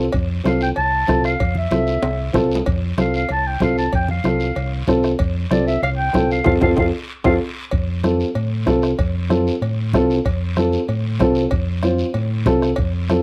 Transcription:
0.13 fingered electric bass F2, bombo low, cowbell, high conga, long guiro
0.44 fingered electric bass C2, upright piano C4 F4 A4, clarinet F5, bombo rim, high conga, short guiro
0.61 clarinet G5, short guiro
0.76 fingered electric bass C2, clarinet A5, cowbell, high conga, long guiro
1.07 fingered electric bass C2, upright piano C4 F4 A4, bombo low, bombo rim, high conga, low timbale, short guiro
1.24 clarinet F5, bombo rim, short guiro
1.40 fingered electric bass F2, bombo low, cowbell, high conga, long guiro
1.55 clarinet E5, low conga
1.71 fingered electric bass C2, upright piano C4 F4 A4, bombo rim, high conga, short guiro
1.87 short guiro
2.03 fingered electric bass C2, cowbell, high conga, high timbale, long guiro
2.33 fingered electric bass C2, upright piano C4 F4 A4, bombo low, bombo rim, high conga, low conga, low timbale, short guiro
2.51 low timbale, short guiro
2.66 fingered electric bass F2, bombo low, cowbell, high conga, long guiro
2.98 fingered electric bass C2, upright piano C4 F4 A4, clarinet F5, bombo rim, high conga, short guiro
3.14 clarinet F5, short guiro
3.29 fingered electric bass C2, clarinet A5, cowbell, high conga, long guiro
3.47 clarinet G5
3.60 fingered electric bass C2, upright piano C4 F4 A4, clarinet F5, bombo low, bombo rim, high conga, short guiro
3.78 clarinet A5, short guiro
3.92 fingered electric bass F2, clarinet G5, bombo low, cowbell, high conga, long guiro
4.08 clarinet F5, low conga
4.24 fingered electric bass C2, upright piano C4 F4 A4, bombo rim, high conga, short guiro
4.40 short guiro
4.55 fingered electric bass C2, cowbell, high conga, long guiro
4.87 fingered electric bass C2, upright piano C4 F4 A4, bombo low, bombo rim, high conga, low conga, short guiro
5.03 bombo rim, short guiro
5.19 fingered electric bass F2, bombo low, cowbell, high conga, long guiro
5.51 fingered electric bass C2, upright piano C4 F4 A4, clarinet D5, bombo rim, high conga, short guiro
5.67 clarinet E5, short guiro
5.82 fingered electric bass C2, clarinet F5, cowbell, high conga, long guiro
5.98 clarinet G5
6.13 fingered electric bass C2, upright piano C4 F4 A4, bombo low, bombo rim, high conga, low timbale, short guiro
6.31 clarinet F5, short guiro
6.44 fingered electric bass F2, upright piano C4 F4 A4, clarinet F5, bombo low, low conga, high timbale, long guiro
6.61 fingered electric bass F2, upright piano C4 F4 A4, clarinet F5, bombo low, low conga, high timbale, long guiro
6.77 fingered electric bass F2, upright piano C4 F4 A4, clarinet F5, bombo low, low conga, high timbale, long guiro
7.24 fingered electric bass F2, upright piano C4 F4 A4, clarinet F5, bombo low, low conga, high timbale, long guiro
7.71 fingered electric bass F2, bombo low, cowbell, high conga
8.03 upright piano C4 F4 A4, bombo rim, high conga, short guiro
8.20 short guiro
8.35 fingered electric bass A2, cowbell, high conga, long guiro
8.66 fingered electric bass C2, upright piano C4 F4 A4, bombo low, bombo rim, high conga, low timbale, short guiro
8.82 bombo rim, short guiro
8.99 fingered electric bass F2, bombo low, cowbell, high conga, long guiro
9.30 upright piano C4 F4 A4, bombo rim, high conga, short guiro
9.47 short guiro
9.62 fingered electric bass A2, cowbell, high conga, long guiro
9.93 fingered electric bass C2, upright piano C4 F4 A4, bombo low, bombo rim, high conga, low conga, short guiro
10.10 short guiro
10.25 fingered electric bass F2, bombo low, cowbell, high conga, long guiro
10.57 upright piano C4 F4 A4, bombo rim, high conga, short guiro
10.73 short guiro
10.88 fingered electric bass A2, cowbell, high conga, long guiro
11.19 fingered electric bass C2, upright piano C4 F4 A4, bombo low, bombo rim, high conga, low timbale, short guiro
11.35 short guiro
11.51 fingered electric bass F2, bombo low, cowbell, high conga, long guiro
11.83 upright piano C4 F4 C5, bombo rim, high conga, short guiro
11.98 short guiro
12.14 fingered electric bass A2, cowbell, high conga, long guiro
12.46 fingered electric bass C2, upright piano C4 F4 A4, bombo low, bombo rim, high conga, low conga, short guiro
12.62 bombo rim, short guiro
12.76 fingered electric bass F2, bombo low, cowbell, high conga, long guiro
13.09 upright piano C4 F4 A4, bombo rim, high conga, short guiro

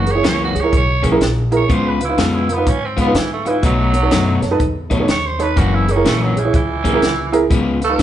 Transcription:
Already playing: upright bass F#1, tenor saxophone F#4
0.06 upright piano G#4 A#4, muted clean electric guitar stroke, closed hi-hat
0.11 upright piano E4, tenor saxophone C#5
0.16 upright piano G#4 C#5
0.23 upright bass C#2, clean electric guitar F#2 E3 A#3 C#4, snare, closed hi-hat
0.28 tenor saxophone C#5
0.45 tenor saxophone F#4
0.54 upright bass C#2, upright piano G#4 C#5, muted clean electric guitar stroke, closed hi-hat
0.61 upright piano E4 G#4 A#4, tenor saxophone C#5
0.72 upright bass B1, muted clean electric guitar stroke, kick, closed hi-hat
0.77 tenor saxophone C#5
1.03 clean electric guitar F#2 E3 A#3 C#4, upright piano G#4 A#4, kick, closed hi-hat
1.11 upright piano E4 G#4 A#4
1.20 upright bass A#1, muted clean electric guitar stroke, snare, closed hi-hat
1.51 upright piano E4 G#4 A#4, muted clean electric guitar stroke, closed hi-hat
1.57 tenor saxophone C#5
1.69 upright bass C#2, clean electric guitar C#3 G#3 B3 F4, tenor saxophone C5, kick, closed hi-hat
1.88 tenor saxophone B4
2.00 upright piano F4 B4, muted clean electric guitar stroke, closed hi-hat
2.05 tenor saxophone E4
2.09 upright piano D#4 F4 B4
2.18 upright bass F2, clean electric guitar C#3 G#3 B3 F4, tenor saxophone A4, snare, closed hi-hat
2.35 tenor saxophone E4
2.49 upright piano F4 A#4, muted clean electric guitar stroke, closed hi-hat
2.54 tenor saxophone B3, upright piano D#4
2.58 upright piano F4 B4
2.66 upright bass G#2, tenor saxophone C#4, muted clean electric guitar stroke, kick, closed hi-hat
2.85 tenor saxophone C4
2.97 clean electric guitar C#3 G#3 B3 F4, upright piano F4 B4, kick, closed hi-hat
3.01 tenor saxophone B3
3.07 upright piano D#4 F4 B4
3.14 upright bass G#2, tenor saxophone E3, muted clean electric guitar stroke, snare, closed hi-hat
3.33 tenor saxophone A3
3.46 tenor saxophone E3, upright piano D#4 F4 B4, muted clean electric guitar stroke, closed hi-hat
3.63 upright bass B1, clean electric guitar B2 F#3 A3 D#4, tenor saxophone F#3, kick, closed hi-hat
3.94 upright piano A4 C#5, muted clean electric guitar stroke, closed hi-hat
4.03 upright piano D#4 A4 C#5
4.11 upright bass F#2, clean electric guitar B2 F#3 A3 D#4, snare, closed hi-hat
4.42 upright bass F#2, upright piano A4 C#5, muted clean electric guitar stroke, snare, closed hi-hat
4.51 upright piano D#4 A4 B4
4.59 upright bass E2, muted clean electric guitar stroke, kick, closed hi-hat
4.90 clean electric guitar B2 F#3 A3 D#4, upright piano A4 C#5, kick, closed hi-hat
5.00 upright piano D#4 A4 C#5
5.08 upright bass D#2, tenor saxophone C#5, muted clean electric guitar stroke, snare, closed hi-hat
5.27 tenor saxophone C5
5.39 upright piano D#4 A4 C#5, tenor saxophone B4, muted clean electric guitar stroke, closed hi-hat
5.56 upright bass F#1, clean electric guitar F#2 E3 A#3 C#4, tenor saxophone F#4, kick, closed hi-hat
5.75 tenor saxophone E4
5.88 tenor saxophone C#4, upright piano G#4 A#4, muted clean electric guitar stroke, closed hi-hat
5.96 upright piano E4 G#4 A#4
6.05 upright bass A#1, clean electric guitar F#2 E3 A#3 C#4, tenor saxophone A3, snare, closed hi-hat
6.23 tenor saxophone F#3
6.36 tenor saxophone E3, upright piano G#4 C#5, muted clean electric guitar stroke, closed hi-hat
6.44 upright piano E4 G#4 C#5
6.53 upright bass C#2, tenor saxophone E3, muted clean electric guitar stroke, kick, closed hi-hat
6.84 clean electric guitar F#2 E3 A#3 C#4, upright piano G#4 A#4, kick, closed hi-hat
6.93 upright piano E4 G#4 A#4
7.01 upright bass C#2, muted clean electric guitar stroke, snare, closed hi-hat
7.32 upright piano E4 G#4 A#4, muted clean electric guitar stroke, closed hi-hat
7.50 upright bass C#2, clean electric guitar C#3 G#3 B3 F4, kick, closed hi-hat
7.80 upright piano F4 B4, muted clean electric guitar stroke, closed hi-hat
7.84 tenor saxophone A4
7.89 upright piano D#4 F4 B4
7.98 upright bass G#2, clean electric guitar C#3 G#3 B3 F4, closed hi-hat

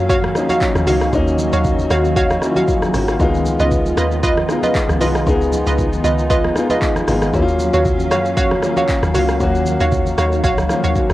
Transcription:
Already playing: log drum bass F#2, analog synth pad D#3 F#3 C#4 F5, grand piano F#3 A#3 C#4 F4
0.09 synth pluck F#4 C#5 F5, kick, shaker
0.24 cross-stick, high conga
0.35 grand piano F3 A#3 C#4 D#4, cross-stick, high conga, shaker
0.41 grand piano F#3
0.49 synth pluck F#4 C#5 F5, high conga, shaker
0.61 kick, clap, shaker
0.75 log drum bass D#2, cross-stick, high conga, shaker
0.87 log drum bass C#2, grand piano F#3 A#3 C#4 D#4, synth pluck F#4 C#5 F5, open hi-hat, low conga, shaker
1.01 cross-stick, shaker
1.13 log drum bass D#2, grand piano F#3 A#3 C#4 D#4, analog synth pad F#4, kick, shaker
1.27 shaker
1.39 high conga, shaker
1.53 log drum bass D#2, synth pluck F#4 C#5 F5, shaker
1.64 kick, low conga, shaker
1.79 high conga, shaker
1.90 log drum bass D#2, synth pluck F#4 C#5 F5, cross-stick, shaker
2.05 shaker
2.16 synth pluck F#4 C#5 F5, kick, shaker
2.30 cross-stick, high conga, shaker
2.42 grand piano F#3 A#3 C#4 E4, cross-stick, high conga, shaker
2.50 grand piano F4
2.56 synth pluck F#4 C#5 F5, high conga, shaker
2.68 kick, shaker
2.82 grand piano D#4 G#4, cross-stick, high conga, shaker
2.94 log drum bass G#1, grand piano C#4 F#4, cross-stick, open hi-hat, low conga, shaker
3.08 grand piano A#3 F4, cross-stick, shaker
3.19 log drum bass C#2, grand piano G#3 B3 D#4 F4, analog synth pad B3 F4, kick, shaker
3.34 shaker
3.45 high conga, shaker
3.60 log drum bass C#2, synth pluck F4 B4 D#5, shaker
3.71 kick, low conga, shaker
3.86 high conga, shaker
3.97 log drum bass D#2, synth pluck F4 B4 D#5, cross-stick, shaker
4.12 shaker
4.23 synth pluck F4 B4 D#5, kick, shaker
4.38 cross-stick, high conga
4.49 grand piano G#3 B3 D#4 F4, cross-stick, high conga, shaker
4.63 synth pluck F4 B4 D#5, high conga, shaker
4.75 kick, clap, shaker
4.89 log drum bass C#2, cross-stick, high conga, shaker
5.01 log drum bass B1, grand piano G#3 B3 D#4 F4, synth pluck F4 B4 D#5, open hi-hat, low conga, shaker
5.15 cross-stick, shaker
5.26 log drum bass C#2, grand piano G#3 B3 D#4 G#4, analog synth pad D#4, kick, shaker
5.41 shaker
5.52 high conga, shaker
5.67 log drum bass C#2, synth pluck F4 B4 D#5, shaker
5.78 kick, low conga, shaker
5.93 high conga, shaker
6.04 log drum bass C#2, synth pluck F4 B4 D#5, shaker
6.19 shaker
6.30 synth pluck F4 B4 D#5, kick, shaker
6.45 cross-stick, high conga
6.56 grand piano G#3 B3 D#4 F4, cross-stick, high conga, shaker
6.70 synth pluck F4 B4 D#5, high conga, shaker
6.82 kick, clap, shaker
6.96 cross-stick, high conga, shaker
7.07 log drum bass G#1, grand piano G#3 B3 D#4 F4, cross-stick, open hi-hat, low conga, shaker
7.22 cross-stick, shaker
7.33 log drum bass D#2, analog synth pad D#3 F#3 C#4 F5, grand piano F#3 A#3 C#4 E4, kick, shaker
7.42 grand piano F4
7.48 shaker
7.59 high conga, shaker
7.73 log drum bass D#2, synth pluck F#4 C#5 F5, shaker
7.85 kick, low conga, shaker
8.00 high conga, shaker
8.11 log drum bass F#2, synth pluck F#4 C#5 F5, cross-stick, shaker
8.25 shaker
8.37 synth pluck F#4 C#5 F5, kick, shaker
8.51 cross-stick, high conga
8.62 grand piano F#3 A#3 C#4 F4, cross-stick, high conga, shaker
8.77 synth pluck F#4 C#5 F5, high conga, shaker
8.89 kick, clap, shaker
9.03 log drum bass D#2, cross-stick, high conga, shaker
9.14 log drum bass C#2, grand piano F#3 A#3 C#4 F4, synth pluck F#4 C#5 F5, open hi-hat, low conga, shaker
9.29 cross-stick, shaker
9.40 log drum bass D#2, grand piano F#3 A#3 C#4 F#4, analog synth pad D#4, kick, shaker
9.55 shaker
9.66 high conga, shaker
9.80 log drum bass D#2, synth pluck F#4 C#5 F5, shaker
9.92 kick, low conga, shaker
10.06 high conga, shaker
10.18 log drum bass D#2, synth pluck F#4 C#5 F5, cross-stick, shaker
10.32 shaker
10.44 log drum bass A#1, synth pluck F#4 C#5 F5, kick, shaker
10.58 log drum bass C#2, cross-stick, high conga, shaker
10.69 grand piano F3 A#3 C#4 F4, cross-stick, high conga, shaker
10.76 grand piano F#3
10.83 log drum bass D#2, synth pluck F#4 C#5 F5, high conga, shaker
10.96 grand piano C#4 F#4, kick, low conga, shaker
11.10 log drum bass C#2, cross-stick, high conga, shaker

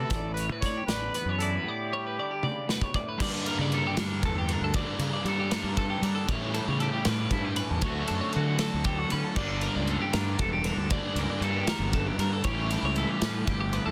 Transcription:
Already playing: clean electric guitar D2 A2 D3 C4 E4, trumpet A4
0.00 clean electric guitar B4
0.10 fingered electric bass A1, clean electric guitar A2 D5, kick, closed hi-hat
0.34 trumpet B4, closed hi-hat
0.39 clean electric guitar C#5
0.49 fingered electric bass A2, clean electric guitar B4
0.61 clean electric guitar D3, trumpet C#5, kick, closed hi-hat
0.66 clean electric guitar D5
0.77 clean electric guitar G4
0.87 fingered electric bass A1, clean electric guitar E2 D5, trumpet B4, snare, closed hi-hat
1.14 clean electric guitar B3 B4, closed hi-hat
1.25 fingered electric bass F#2, clean electric guitar C#5
1.39 clean electric guitar E4 D5, trumpet A4, closed hi-hat
1.56 clean electric guitar B4
1.63 clean electric guitar A2, trumpet G4
1.68 clean electric guitar D5
1.93 clean electric guitar G3 C#5
2.07 clean electric guitar B4
2.18 clean electric guitar D3 D5
2.31 clean electric guitar G4
2.43 clean electric guitar C#3 D5, high tom
2.68 clean electric guitar B2 B4, snare
2.81 clean electric guitar C#5, kick
2.94 clean electric guitar A2 D5, kick
3.09 clean electric guitar B4
3.19 overdriven electric guitar G2 D3 G3 A#3 D4, fingered electric bass G2, clean electric guitar G2 D5, kick, crash
3.46 clean electric guitar A#3 A#4, ride
3.59 fingered electric bass C#3, clean electric guitar D5
3.72 clean electric guitar A4 A#4, ride
3.87 clean electric guitar G4
3.97 fingered electric bass G3, clean electric guitar D4 A#4, snare, ride
4.23 fingered electric bass E2, clean electric guitar A4, kick, ride
4.38 clean electric guitar G4
4.49 clean electric guitar D4 A#4, ride
4.61 fingered electric bass D2, clean electric guitar A4
4.74 overdriven electric guitar G2 D3 G3 A#3, clean electric guitar G2 D5, kick, ride
4.78 overdriven electric guitar D4
4.99 fingered electric bass C#3, clean electric guitar A#3 A#4, ride
5.13 clean electric guitar D5
5.25 fingered electric bass G3, clean electric guitar A4 A#4, ride
5.40 clean electric guitar G4
5.51 clean electric guitar D4 A#4, snare, ride
5.64 fingered electric bass G2
5.77 clean electric guitar A4, kick, ride
5.90 clean electric guitar G4
6.02 fingered electric bass G3, clean electric guitar D4 A#4, ride
6.15 clean electric guitar A4
6.28 overdriven electric guitar A2 E3 G3 C#4, fingered electric bass A2, clean electric guitar A2 C#5, kick, ride
6.32 overdriven electric guitar E4
6.54 clean electric guitar G3 A4, ride
6.68 fingered electric bass C#3, clean electric guitar C#5
6.80 clean electric guitar G4 A4, ride
6.93 clean electric guitar G4
7.05 fingered electric bass A2, clean electric guitar C#4 B4, snare, ride
7.31 fingered electric bass G2, clean electric guitar E4 A4, kick, ride
7.43 clean electric guitar G4
7.56 clean electric guitar C#4 B4, ride
7.70 fingered electric bass E2, clean electric guitar A4
7.81 fingered electric bass D2, clean electric guitar D2 D3 A3 C#5, overdriven electric guitar D3 F#3 A3 D4, kick, ride
7.86 clean electric guitar F#4
8.08 fingered electric bass F#2, clean electric guitar A3 A4, ride
8.21 clean electric guitar C#5
8.33 fingered electric bass D3, clean electric guitar F#4 A4, ride
8.47 clean electric guitar F#4
8.59 clean electric guitar A4, snare, ride
8.74 fingered electric bass D2
8.84 clean electric guitar G4 A4, kick, ride
8.98 clean electric guitar F#4
9.10 fingered electric bass D3, clean electric guitar C#4 B4, ride
9.24 clean electric guitar A4
9.35 fingered electric bass G1, overdriven electric guitar G2 D3 G3 A#3, clean electric guitar G2 D5, kick, crash
9.39 clean electric guitar D3 A#3 D4 A4, overdriven electric guitar D4
9.61 clean electric guitar A#3 A#4, ride
9.75 fingered electric bass C#2, clean electric guitar D5
9.87 clean electric guitar A4 A#4, ride
10.02 clean electric guitar G4
10.13 fingered electric bass G2, clean electric guitar D4 A#4, snare, ride
10.39 fingered electric bass E1, clean electric guitar A4, kick, ride
10.53 clean electric guitar G4
10.64 clean electric guitar A#4, ride
10.68 clean electric guitar D4
10.77 fingered electric bass D2, clean electric guitar A4
10.89 overdriven electric guitar G2 D3 G3 A#3 D4, clean electric guitar G2 D5, kick, ride
11.15 fingered electric bass C#2, clean electric guitar A#3 A#4, ride
11.30 clean electric guitar D5
11.41 fingered electric bass G2, clean electric guitar A4 A#4, ride
11.57 clean electric guitar G4
11.67 clean electric guitar E2 A#4, snare, ride
11.79 fingered electric bass G1
11.93 clean electric guitar F#2 A4, kick, ride
12.07 clean electric guitar G4
12.18 fingered electric bass G2, clean electric guitar G2 A#4, ride
12.33 clean electric guitar A4
12.43 fingered electric bass A1, overdriven electric guitar A2 E3 G3 C#4 E4, clean electric guitar A2 E3 G3 C#4 C#5, kick, ride
12.48 clean electric guitar G4
12.71 clean electric guitar G3 A4, ride
12.83 fingered electric bass C#2, clean electric guitar C#5
12.96 clean electric guitar E4 A4, ride
13.09 clean electric guitar G4
13.22 fingered electric bass A2, clean electric guitar C#4 B4, snare, ride
13.47 fingered electric bass G1, clean electric guitar G4 A4, kick, ride
13.61 clean electric guitar G4
13.73 clean electric guitar B3 B4, ride
13.86 fingered electric bass E2, clean electric guitar C#4 A4

